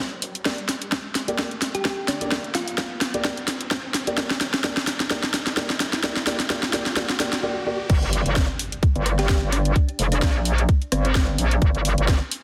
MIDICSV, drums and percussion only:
0, 0, Header, 1, 2, 480
1, 0, Start_track
1, 0, Key_signature, -2, "minor"
1, 0, Tempo, 465116
1, 469, Time_signature, 4, 2, 24, 8
1, 12830, End_track
2, 0, Start_track
2, 0, Title_t, "Drums"
2, 229, Note_on_c, 9, 46, 104
2, 332, Note_off_c, 9, 46, 0
2, 362, Note_on_c, 9, 42, 51
2, 465, Note_off_c, 9, 42, 0
2, 469, Note_on_c, 9, 36, 115
2, 469, Note_on_c, 9, 38, 73
2, 469, Note_on_c, 9, 42, 64
2, 572, Note_off_c, 9, 36, 0
2, 572, Note_off_c, 9, 38, 0
2, 572, Note_off_c, 9, 42, 0
2, 602, Note_on_c, 9, 42, 33
2, 705, Note_off_c, 9, 42, 0
2, 709, Note_on_c, 9, 38, 73
2, 709, Note_on_c, 9, 46, 103
2, 812, Note_off_c, 9, 38, 0
2, 812, Note_off_c, 9, 46, 0
2, 842, Note_on_c, 9, 42, 50
2, 945, Note_off_c, 9, 42, 0
2, 949, Note_on_c, 9, 36, 115
2, 949, Note_on_c, 9, 38, 77
2, 949, Note_on_c, 9, 42, 65
2, 1052, Note_off_c, 9, 36, 0
2, 1052, Note_off_c, 9, 38, 0
2, 1052, Note_off_c, 9, 42, 0
2, 1189, Note_on_c, 9, 38, 74
2, 1189, Note_on_c, 9, 46, 102
2, 1292, Note_off_c, 9, 38, 0
2, 1292, Note_off_c, 9, 46, 0
2, 1322, Note_on_c, 9, 42, 50
2, 1426, Note_off_c, 9, 42, 0
2, 1429, Note_on_c, 9, 36, 118
2, 1429, Note_on_c, 9, 38, 79
2, 1429, Note_on_c, 9, 42, 60
2, 1532, Note_off_c, 9, 36, 0
2, 1532, Note_off_c, 9, 38, 0
2, 1532, Note_off_c, 9, 42, 0
2, 1562, Note_on_c, 9, 42, 35
2, 1665, Note_off_c, 9, 42, 0
2, 1669, Note_on_c, 9, 38, 78
2, 1669, Note_on_c, 9, 46, 101
2, 1772, Note_off_c, 9, 38, 0
2, 1772, Note_off_c, 9, 46, 0
2, 1802, Note_on_c, 9, 42, 50
2, 1905, Note_off_c, 9, 42, 0
2, 1909, Note_on_c, 9, 36, 118
2, 1909, Note_on_c, 9, 38, 79
2, 1909, Note_on_c, 9, 42, 60
2, 2012, Note_off_c, 9, 36, 0
2, 2012, Note_off_c, 9, 38, 0
2, 2012, Note_off_c, 9, 42, 0
2, 2149, Note_on_c, 9, 38, 80
2, 2149, Note_on_c, 9, 46, 104
2, 2252, Note_off_c, 9, 38, 0
2, 2252, Note_off_c, 9, 46, 0
2, 2282, Note_on_c, 9, 42, 52
2, 2385, Note_off_c, 9, 42, 0
2, 2389, Note_on_c, 9, 36, 111
2, 2389, Note_on_c, 9, 38, 82
2, 2389, Note_on_c, 9, 42, 66
2, 2492, Note_off_c, 9, 36, 0
2, 2492, Note_off_c, 9, 38, 0
2, 2492, Note_off_c, 9, 42, 0
2, 2522, Note_on_c, 9, 42, 35
2, 2625, Note_off_c, 9, 42, 0
2, 2629, Note_on_c, 9, 38, 80
2, 2629, Note_on_c, 9, 46, 97
2, 2732, Note_off_c, 9, 38, 0
2, 2732, Note_off_c, 9, 46, 0
2, 2762, Note_on_c, 9, 46, 57
2, 2865, Note_off_c, 9, 46, 0
2, 2869, Note_on_c, 9, 36, 106
2, 2869, Note_on_c, 9, 38, 85
2, 2869, Note_on_c, 9, 42, 66
2, 2972, Note_off_c, 9, 36, 0
2, 2972, Note_off_c, 9, 38, 0
2, 2972, Note_off_c, 9, 42, 0
2, 3108, Note_on_c, 9, 38, 83
2, 3108, Note_on_c, 9, 46, 96
2, 3212, Note_off_c, 9, 38, 0
2, 3212, Note_off_c, 9, 46, 0
2, 3242, Note_on_c, 9, 42, 51
2, 3345, Note_off_c, 9, 42, 0
2, 3349, Note_on_c, 9, 36, 116
2, 3349, Note_on_c, 9, 38, 85
2, 3349, Note_on_c, 9, 42, 66
2, 3452, Note_off_c, 9, 36, 0
2, 3452, Note_off_c, 9, 38, 0
2, 3452, Note_off_c, 9, 42, 0
2, 3482, Note_on_c, 9, 42, 39
2, 3585, Note_off_c, 9, 42, 0
2, 3589, Note_on_c, 9, 38, 89
2, 3589, Note_on_c, 9, 46, 105
2, 3692, Note_off_c, 9, 38, 0
2, 3692, Note_off_c, 9, 46, 0
2, 3721, Note_on_c, 9, 42, 54
2, 3825, Note_off_c, 9, 42, 0
2, 3829, Note_on_c, 9, 36, 118
2, 3829, Note_on_c, 9, 38, 87
2, 3829, Note_on_c, 9, 42, 62
2, 3932, Note_off_c, 9, 36, 0
2, 3932, Note_off_c, 9, 38, 0
2, 3932, Note_off_c, 9, 42, 0
2, 4069, Note_on_c, 9, 38, 88
2, 4069, Note_on_c, 9, 46, 97
2, 4172, Note_off_c, 9, 38, 0
2, 4172, Note_off_c, 9, 46, 0
2, 4202, Note_on_c, 9, 42, 52
2, 4306, Note_off_c, 9, 42, 0
2, 4309, Note_on_c, 9, 36, 113
2, 4309, Note_on_c, 9, 38, 93
2, 4309, Note_on_c, 9, 42, 69
2, 4412, Note_off_c, 9, 36, 0
2, 4413, Note_off_c, 9, 38, 0
2, 4413, Note_off_c, 9, 42, 0
2, 4442, Note_on_c, 9, 38, 80
2, 4442, Note_on_c, 9, 42, 37
2, 4545, Note_off_c, 9, 38, 0
2, 4545, Note_off_c, 9, 42, 0
2, 4549, Note_on_c, 9, 38, 90
2, 4549, Note_on_c, 9, 46, 98
2, 4652, Note_off_c, 9, 38, 0
2, 4652, Note_off_c, 9, 46, 0
2, 4682, Note_on_c, 9, 38, 82
2, 4682, Note_on_c, 9, 42, 51
2, 4786, Note_off_c, 9, 38, 0
2, 4786, Note_off_c, 9, 42, 0
2, 4789, Note_on_c, 9, 36, 113
2, 4789, Note_on_c, 9, 38, 99
2, 4789, Note_on_c, 9, 42, 68
2, 4892, Note_off_c, 9, 36, 0
2, 4892, Note_off_c, 9, 38, 0
2, 4892, Note_off_c, 9, 42, 0
2, 4922, Note_on_c, 9, 38, 84
2, 5025, Note_off_c, 9, 38, 0
2, 5029, Note_on_c, 9, 38, 93
2, 5029, Note_on_c, 9, 46, 96
2, 5132, Note_off_c, 9, 38, 0
2, 5132, Note_off_c, 9, 46, 0
2, 5162, Note_on_c, 9, 38, 86
2, 5162, Note_on_c, 9, 42, 54
2, 5265, Note_off_c, 9, 38, 0
2, 5265, Note_off_c, 9, 42, 0
2, 5268, Note_on_c, 9, 38, 96
2, 5268, Note_on_c, 9, 42, 68
2, 5269, Note_on_c, 9, 36, 114
2, 5372, Note_off_c, 9, 36, 0
2, 5372, Note_off_c, 9, 38, 0
2, 5372, Note_off_c, 9, 42, 0
2, 5402, Note_on_c, 9, 38, 90
2, 5402, Note_on_c, 9, 42, 40
2, 5505, Note_off_c, 9, 38, 0
2, 5505, Note_off_c, 9, 42, 0
2, 5509, Note_on_c, 9, 38, 99
2, 5509, Note_on_c, 9, 46, 101
2, 5612, Note_off_c, 9, 38, 0
2, 5612, Note_off_c, 9, 46, 0
2, 5642, Note_on_c, 9, 38, 85
2, 5642, Note_on_c, 9, 42, 55
2, 5745, Note_off_c, 9, 38, 0
2, 5745, Note_off_c, 9, 42, 0
2, 5748, Note_on_c, 9, 38, 98
2, 5748, Note_on_c, 9, 42, 67
2, 5749, Note_on_c, 9, 36, 116
2, 5852, Note_off_c, 9, 36, 0
2, 5852, Note_off_c, 9, 38, 0
2, 5852, Note_off_c, 9, 42, 0
2, 5882, Note_on_c, 9, 38, 88
2, 5985, Note_off_c, 9, 38, 0
2, 5988, Note_on_c, 9, 38, 102
2, 5988, Note_on_c, 9, 46, 103
2, 6091, Note_off_c, 9, 38, 0
2, 6091, Note_off_c, 9, 46, 0
2, 6122, Note_on_c, 9, 38, 88
2, 6122, Note_on_c, 9, 42, 54
2, 6225, Note_off_c, 9, 38, 0
2, 6225, Note_off_c, 9, 42, 0
2, 6228, Note_on_c, 9, 38, 105
2, 6228, Note_on_c, 9, 42, 71
2, 6229, Note_on_c, 9, 36, 117
2, 6332, Note_off_c, 9, 36, 0
2, 6332, Note_off_c, 9, 38, 0
2, 6332, Note_off_c, 9, 42, 0
2, 6362, Note_on_c, 9, 38, 86
2, 6362, Note_on_c, 9, 42, 38
2, 6465, Note_off_c, 9, 38, 0
2, 6465, Note_off_c, 9, 42, 0
2, 6468, Note_on_c, 9, 38, 103
2, 6468, Note_on_c, 9, 46, 102
2, 6571, Note_off_c, 9, 38, 0
2, 6571, Note_off_c, 9, 46, 0
2, 6602, Note_on_c, 9, 38, 91
2, 6602, Note_on_c, 9, 46, 57
2, 6705, Note_off_c, 9, 38, 0
2, 6705, Note_off_c, 9, 46, 0
2, 6708, Note_on_c, 9, 38, 104
2, 6708, Note_on_c, 9, 42, 73
2, 6709, Note_on_c, 9, 36, 112
2, 6811, Note_off_c, 9, 38, 0
2, 6811, Note_off_c, 9, 42, 0
2, 6812, Note_off_c, 9, 36, 0
2, 6841, Note_on_c, 9, 38, 91
2, 6945, Note_off_c, 9, 38, 0
2, 6948, Note_on_c, 9, 38, 104
2, 6948, Note_on_c, 9, 46, 99
2, 7051, Note_off_c, 9, 38, 0
2, 7051, Note_off_c, 9, 46, 0
2, 7081, Note_on_c, 9, 38, 90
2, 7081, Note_on_c, 9, 42, 57
2, 7185, Note_off_c, 9, 38, 0
2, 7185, Note_off_c, 9, 42, 0
2, 7188, Note_on_c, 9, 38, 108
2, 7188, Note_on_c, 9, 42, 71
2, 7189, Note_on_c, 9, 36, 114
2, 7291, Note_off_c, 9, 38, 0
2, 7291, Note_off_c, 9, 42, 0
2, 7292, Note_off_c, 9, 36, 0
2, 7322, Note_on_c, 9, 38, 98
2, 7322, Note_on_c, 9, 42, 41
2, 7425, Note_off_c, 9, 38, 0
2, 7425, Note_off_c, 9, 42, 0
2, 7428, Note_on_c, 9, 38, 109
2, 7428, Note_on_c, 9, 46, 102
2, 7532, Note_off_c, 9, 38, 0
2, 7532, Note_off_c, 9, 46, 0
2, 7562, Note_on_c, 9, 38, 100
2, 7562, Note_on_c, 9, 42, 56
2, 7665, Note_off_c, 9, 38, 0
2, 7665, Note_off_c, 9, 42, 0
2, 8149, Note_on_c, 9, 36, 116
2, 8149, Note_on_c, 9, 42, 70
2, 8149, Note_on_c, 9, 49, 103
2, 8252, Note_off_c, 9, 36, 0
2, 8252, Note_off_c, 9, 42, 0
2, 8252, Note_off_c, 9, 49, 0
2, 8282, Note_on_c, 9, 42, 38
2, 8385, Note_off_c, 9, 42, 0
2, 8389, Note_on_c, 9, 46, 104
2, 8492, Note_off_c, 9, 46, 0
2, 8522, Note_on_c, 9, 42, 53
2, 8625, Note_off_c, 9, 42, 0
2, 8629, Note_on_c, 9, 36, 118
2, 8629, Note_on_c, 9, 37, 67
2, 8629, Note_on_c, 9, 38, 127
2, 8629, Note_on_c, 9, 42, 72
2, 8732, Note_off_c, 9, 36, 0
2, 8732, Note_off_c, 9, 37, 0
2, 8732, Note_off_c, 9, 38, 0
2, 8732, Note_off_c, 9, 42, 0
2, 8869, Note_on_c, 9, 46, 104
2, 8972, Note_off_c, 9, 46, 0
2, 9002, Note_on_c, 9, 42, 55
2, 9106, Note_off_c, 9, 42, 0
2, 9109, Note_on_c, 9, 36, 118
2, 9109, Note_on_c, 9, 42, 69
2, 9213, Note_off_c, 9, 36, 0
2, 9213, Note_off_c, 9, 42, 0
2, 9242, Note_on_c, 9, 42, 39
2, 9345, Note_off_c, 9, 42, 0
2, 9349, Note_on_c, 9, 37, 63
2, 9349, Note_on_c, 9, 46, 109
2, 9452, Note_off_c, 9, 37, 0
2, 9452, Note_off_c, 9, 46, 0
2, 9482, Note_on_c, 9, 38, 39
2, 9482, Note_on_c, 9, 42, 58
2, 9585, Note_off_c, 9, 38, 0
2, 9585, Note_off_c, 9, 42, 0
2, 9589, Note_on_c, 9, 36, 124
2, 9589, Note_on_c, 9, 38, 127
2, 9589, Note_on_c, 9, 42, 67
2, 9692, Note_off_c, 9, 38, 0
2, 9692, Note_off_c, 9, 42, 0
2, 9693, Note_off_c, 9, 36, 0
2, 9829, Note_on_c, 9, 46, 105
2, 9932, Note_off_c, 9, 46, 0
2, 9962, Note_on_c, 9, 42, 57
2, 10065, Note_off_c, 9, 42, 0
2, 10069, Note_on_c, 9, 36, 122
2, 10069, Note_on_c, 9, 42, 67
2, 10172, Note_off_c, 9, 36, 0
2, 10172, Note_off_c, 9, 42, 0
2, 10202, Note_on_c, 9, 42, 36
2, 10305, Note_off_c, 9, 42, 0
2, 10309, Note_on_c, 9, 46, 109
2, 10412, Note_off_c, 9, 46, 0
2, 10442, Note_on_c, 9, 46, 62
2, 10545, Note_off_c, 9, 46, 0
2, 10549, Note_on_c, 9, 36, 120
2, 10549, Note_on_c, 9, 37, 64
2, 10549, Note_on_c, 9, 38, 127
2, 10549, Note_on_c, 9, 42, 69
2, 10652, Note_off_c, 9, 36, 0
2, 10652, Note_off_c, 9, 37, 0
2, 10652, Note_off_c, 9, 38, 0
2, 10652, Note_off_c, 9, 42, 0
2, 10789, Note_on_c, 9, 46, 110
2, 10892, Note_off_c, 9, 46, 0
2, 10922, Note_on_c, 9, 42, 54
2, 11025, Note_off_c, 9, 42, 0
2, 11029, Note_on_c, 9, 36, 124
2, 11029, Note_on_c, 9, 42, 65
2, 11132, Note_off_c, 9, 36, 0
2, 11132, Note_off_c, 9, 42, 0
2, 11162, Note_on_c, 9, 42, 39
2, 11266, Note_off_c, 9, 42, 0
2, 11269, Note_on_c, 9, 37, 63
2, 11269, Note_on_c, 9, 46, 111
2, 11372, Note_off_c, 9, 37, 0
2, 11372, Note_off_c, 9, 46, 0
2, 11402, Note_on_c, 9, 42, 53
2, 11505, Note_off_c, 9, 42, 0
2, 11509, Note_on_c, 9, 36, 127
2, 11509, Note_on_c, 9, 38, 123
2, 11509, Note_on_c, 9, 42, 62
2, 11612, Note_off_c, 9, 36, 0
2, 11612, Note_off_c, 9, 38, 0
2, 11612, Note_off_c, 9, 42, 0
2, 11749, Note_on_c, 9, 46, 109
2, 11852, Note_off_c, 9, 46, 0
2, 11882, Note_on_c, 9, 42, 54
2, 11985, Note_off_c, 9, 42, 0
2, 11989, Note_on_c, 9, 36, 121
2, 11989, Note_on_c, 9, 42, 65
2, 12092, Note_off_c, 9, 36, 0
2, 12092, Note_off_c, 9, 42, 0
2, 12123, Note_on_c, 9, 42, 36
2, 12226, Note_off_c, 9, 42, 0
2, 12229, Note_on_c, 9, 46, 109
2, 12333, Note_off_c, 9, 46, 0
2, 12363, Note_on_c, 9, 42, 51
2, 12466, Note_off_c, 9, 42, 0
2, 12469, Note_on_c, 9, 36, 124
2, 12470, Note_on_c, 9, 37, 69
2, 12470, Note_on_c, 9, 38, 124
2, 12470, Note_on_c, 9, 42, 64
2, 12572, Note_off_c, 9, 36, 0
2, 12573, Note_off_c, 9, 37, 0
2, 12573, Note_off_c, 9, 38, 0
2, 12573, Note_off_c, 9, 42, 0
2, 12709, Note_on_c, 9, 46, 112
2, 12812, Note_off_c, 9, 46, 0
2, 12830, End_track
0, 0, End_of_file